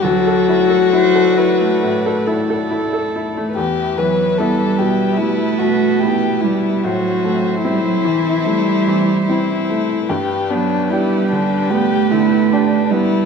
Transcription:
<<
  \new Staff \with { instrumentName = "Viola" } { \time 4/4 \key e \minor \tempo 4 = 73 a'4 c''8 b'4 a'4. | b'1 | c''1 | b'1 | }
  \new Staff \with { instrumentName = "Violin" } { \time 4/4 \key e \minor fis'2. r4 | g'8 b'8 a'8 g'8 e'8 fis'8 g'8 e'8 | fis'4 e'2 e'4 | g'8 d'8 e'8 d'8 g'8 e'8 d'8 e'8 | }
  \new Staff \with { instrumentName = "String section" } { \time 4/4 \key e \minor <a e' d''>1 | <b e' e''>1 | <c' e' e''>1 | <b d'' g''>1 | }
  \new Staff \with { instrumentName = "Upright piano" } { \time 4/4 \key e \minor d,16 a'16 e'16 a'16 e'16 a'16 e'16 a16 a,16 a'16 e'16 a'16 e'16 a'16 e'16 a16 | e,8 e8 <b e'>8 b,8 g8 b,8 <b e'>8 g8 | a,8 a8 <c' e'>8 e8 a8 e8 <c' e'>8 a8 | g,8 b8 <d' g'>8 d8 b8 d8 <d' g'>8 b8 | }
  \new Staff \with { instrumentName = "Cello" } { \clef bass \time 4/4 \key e \minor fis2. r4 | r8 fis8 g4 a4. g8 | fis4 g16 fis16 e8 g4. r8 | r8 fis8 g4 a4. g8 | }
>>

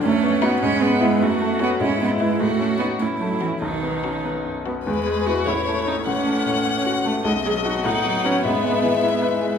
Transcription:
<<
  \new Staff \with { instrumentName = "Violin" } { \time 6/8 \key e \major \tempo 4. = 100 r4 dis'8 r4 e'8 | r4 fis'8 r4 e'8 | r4 fis'8 r4 fis'8 | r4 fis'8 r4 fis'8 |
b'4. cis''4. | fis''2. | dis''4. fis''4. | e''2. | }
  \new Staff \with { instrumentName = "Viola" } { \time 6/8 \key e \major cis'4. b4. | fis'4. e'4. | fis'4. e'4. | dis'2~ dis'16 r16 b8 |
gis8 gis'8 fis'8 e'4 dis'8 | cis'2 r8 a8 | gis8 gis'8 fis'8 dis'4 cis'8 | b2 r4 | }
  \new Staff \with { instrumentName = "Grand piano" } { \time 6/8 \key e \major fis,8 b8 <dis' fis'>8 gis,8 gis8 <b e'>8 | fis,8 a8 <cis' fis'>8 gis,8 gis8 <b e'>8 | a,8 cis'8 dis'8 cis'8 a8 cis'8 | b,,8 b8 cis'8 b8 fis,8 b8 |
e,8 gis8 <b e'>8 a,,8 a8 <cis' e'>8 | a,,8 a8 a,8 cis'8 fis'8 a8 | b,,8 fis8 <dis' fis'>8 a,8 fis8 <fis' b'>8 | gis,8 gis8 e8 e'8 b'8 gis8 | }
  \new Staff \with { instrumentName = "Cello" } { \time 6/8 \key e \major a4 b8 cis'8 b8 gis8 | a4 b8 cis'8 b8 gis8 | a4 b8 a8 fis8 e8 | dis4. r4. |
gis4. a4.~ | a2. | b2.~ | b2. | }
>>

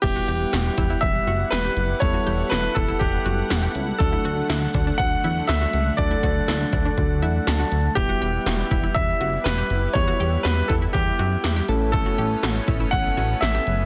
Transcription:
<<
  \new Staff \with { instrumentName = "Grand piano" } { \time 4/4 \key e \dorian \tempo 4 = 121 g'2 e''4 b'4 | cis''4 b'8 a'8 g'4. r8 | a'2 fis''4 e''4 | d''2.~ d''8 r8 |
g'2 e''4 b'4 | cis''4 b'8 a'8 g'4. r8 | a'2 fis''4 e''4 | }
  \new Staff \with { instrumentName = "Synth arpeggio sound" } { \time 4/4 \key e \dorian r16 fis'16 g'8 fis'8 e'16 e'8 r16 fis'8 g'16 g'8 r16 | r16 fis'16 g'8 fis'8 e'16 e'8 r16 fis'8 g'16 g'8 r16 | r16 e'16 fis'8 e'8 d'16 d'8 r16 e'8 fis'16 fis'8 r16 | r16 e'16 fis'8 e'8 d'16 d'8 r16 e'8 fis'16 fis'8 r16 |
r16 fis'16 g'8 fis'8 e'16 e'8 r16 fis'8 g'16 g'8 r16 | r16 fis'16 g'8 fis'8 e'16 e'8 r16 fis'8 g'16 g'8 r16 | r16 fis'16 g'8 fis'8 e'16 e'8 r16 fis'8 g'16 g'8 r16 | }
  \new Staff \with { instrumentName = "Synth keys" } { \time 4/4 \key e \dorian << { r1 | r1 | r1 | r2 r8 fis''8 a''4 |
r1 | r1 | r1 | } \\ { <g b e' g'>1 | <g b e' a'>1 | <fis a d' fis'>1 | <fis a d' a'>1 |
<g b e' g'>1 | <g b e' g'>2.~ <g b e' g'>8 <a cis' e' a'>8~ | <a cis' e' a'>2.~ <a cis' e' a'>8 r8 | } >> }
  \new Staff \with { instrumentName = "Analog synth pad" } { \time 4/4 \key e \dorian << { fis''1~ | fis''1~ | fis''1~ | fis''1~ |
fis''1~ | fis''2.~ fis''8 cis'8~ | cis'1 | } \\ { <g e'>1~ | <g e'>1 | <d a>1~ | <d a>1 |
<g e'>1~ | <g e'>2.~ <g e'>8 <a b>8~ | <a b>1 | } >> }
  \new Staff \with { instrumentName = "Analog synth bass" } { \clef bass \time 4/4 \key e \dorian e,,8 e,,8 e,,8 e,,8 e,,8 fis,,8 e,,8 fis,,8 | e,,8 e,,8 e,,8 e,,8 e,,8 fis,,8 e,,8 cis,8 | d,8 d,8 d,8 d,8 d,8 e,8 d,8 cis,8 | d,8 d,8 d,8 d,8 d,8 e,8 d,8 d,8 |
e,,8 e,,8 e,,8 e,,8 e,,8 fis,,8 e,,8 fis,,8 | e,8 e,8 e,8 e,8 e,8 fis,8 e,8 a,,8~ | a,,8 a,,8 a,,8 a,,8 a,,8 a,,8 a,,8 fis,,8 | }
  \new DrumStaff \with { instrumentName = "Drums" } \drummode { \time 4/4 <cymc hh bd>8 hh8 <hh sn>8 <hh bd>8 <hh bd>8 hh8 <hh sn>8 hh8 | <hh bd>8 hh8 <hh sn>8 <hh bd>8 <hh bd>8 hh8 <hh sn>8 hh8 | <hh bd>8 hh8 <hh sn>8 <hh bd>8 <hh bd>8 hh8 <hh sn>8 hh8 | <hh bd>8 <hh bd>8 <hh sn>8 <hh bd>8 <hh bd>8 hh8 <hh sn>8 hh8 |
<hh bd>8 hh8 <hh sn>8 <hh bd>8 <hh bd>8 hh8 <hh sn>8 hh8 | <hh bd>8 hh8 <hh sn>8 <hh bd>8 <hh bd>8 hh8 <hh sn>8 hh8 | <hh bd>8 hh8 <hh sn>8 <hh bd>8 <hh bd>8 hh8 <hh sn>8 hh8 | }
>>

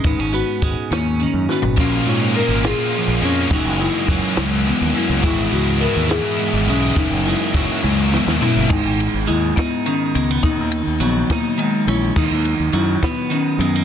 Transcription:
<<
  \new Staff \with { instrumentName = "Marimba" } { \time 6/8 \key gis \minor \tempo 4. = 69 dis'8 fis'4 ais8 cis'8 fis'8 | cis'8 eis'8 ais'8 gis'4 cis'8 | dis'8 e'4 gis8 b8 e'8 | e'8 fis'8 ais'8 gis'4 cis'8 |
dis'8 e'4 gis8 b8 e'8 | dis'4 e'8 b8 cis'8 b8 | dis'4 b8 ais8 gis8 e'8 | dis'4 e'8 b8 cis'8 b8 | }
  \new Staff \with { instrumentName = "Clean electric guitar" } { \clef bass \time 6/8 \key gis \minor << { <gis b>16 cis'16 b4 cis'4 b8 | eis'8 cis'4 eis'4 cis'8 | <fis gis e'>8 gis2~ gis8 | <e gis fis'>8 gis2 gis8~ |
gis8 gis2~ gis8~ | gis4. dis'4 gis16 b16 | r4. dis'4 cis'8 | r4. b4 gis16 ais16 | } \\ { gis,4 gis4 dis4 | ais,4 ais4 eis4 | fis,4 fis4 e,8 fis,8 | gis,4 e4 gis,4 |
fis,4 fis4 e,8 fis,8 | gis,4 gis4 dis4 | dis4 fis4 dis4 | dis4 fis4 dis4 | } >> }
  \new Staff \with { instrumentName = "Overdriven electric guitar" } { \clef bass \time 6/8 \key gis \minor r2. | <ais, eis ais cis'>4 <ais, eis ais cis'>8 <ais, eis ais cis'>4 <eis ais cis'>8 | <fis, cis e ais cis'>4 <cis e ais cis'>8 <fis, cis e ais cis'>4 <e ais cis'>8 | <gis, e gis b e'>4 <e gis b e'>8 <gis, e gis b e'>4 <gis b e'>8 |
<fis, cis e ais e'>4 <cis e ais e'>8 <fis, cis e ais e'>4 <e ais e'>8 | r2. | r2. | r2. | }
  \new Staff \with { instrumentName = "Fingered electric bass" } { \clef bass \time 6/8 \key gis \minor gis,,16 gis,,8 r16 gis,,16 r16 dis,8. fis,16 r16 gis,,16 | ais,,8 gis,8. gis,,8 r8 ais,,16 eis,8 | fis,,16 fis,,8 r16 fis,,16 r16 cis,8. dis,16 r16 cis,16 | gis,,8 cis,8. dis,8 r8 gis,,16 b,,8 |
fis,,16 fis,,8 r16 fis,,16 r16 cis,8. dis,16 r16 fis,,16 | gis,,16 gis,,8 gis,,16 dis,8 r4 cis,8 | dis,16 dis,8 dis,16 ais,,8 r4 ais,,8 | dis,16 dis,8 dis,16 fis,8 r4 fis,8 | }
  \new DrumStaff \with { instrumentName = "Drums" } \drummode { \time 6/8 <hh bd>8 hh8 <hh bd>8 <hh sn>8 hh8 sn16 tomfh16 | <hh bd>8 hh8 hh8 <hh sn>8 hh8 hh8 | <hh bd>8 hh8 <hh bd>8 <hh sn>8 hh8 hh8 | <hh bd>8 hh8 hh8 <hh sn>8 hh8 hh8 |
<hh bd>8 hh8 <hh bd>8 tommh8 sn16 sn16 tomfh8 | <cymc bd>8 cymr8 cymr8 <bd cymr sn>8 cymr8 cymr8 | <bd cymr>8 cymr8 cymr8 <bd cymr sn>8 cymr8 cymr8 | <cymc bd>8 cymr8 cymr8 <bd cymr sn>8 cymr8 cymr8 | }
>>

